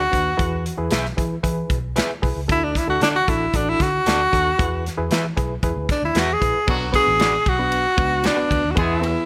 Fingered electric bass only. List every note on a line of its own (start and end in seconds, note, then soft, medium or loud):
0.13 0.32 D#2 medium
0.39 0.68 E2 loud
0.78 0.88 E2 medium
0.91 1.11 B1 medium
1.18 1.37 E3 medium
1.44 1.63 E3 loud
1.70 1.99 B1 loud
2.23 2.33 B1 medium
2.36 2.46 C#2 medium
2.49 2.78 D2 loud
2.88 2.98 D2 medium
3.01 3.20 D3 loud
3.28 3.47 A1 medium
3.54 3.73 A1 loud
3.80 3.99 D3 loud
4.07 4.26 D2 medium
4.33 4.52 D#2 loud
4.60 4.88 E2 loud
4.98 5.08 E2 medium
5.11 5.30 E3 medium
5.38 5.57 B1 medium
5.63 5.73 E2 loud
5.76 5.86 D2 loud
6.03 6.12 D2 loud
6.15 6.34 E2 medium
6.42 6.51 A#1 medium
6.68 6.97 B1 loud
7.07 7.35 A1 medium
7.47 7.85 B1 medium
7.98 8.27 C#2 loud
8.51 8.60 D2 loud
8.64 8.74 D#2 medium
8.77 9.15 E2 loud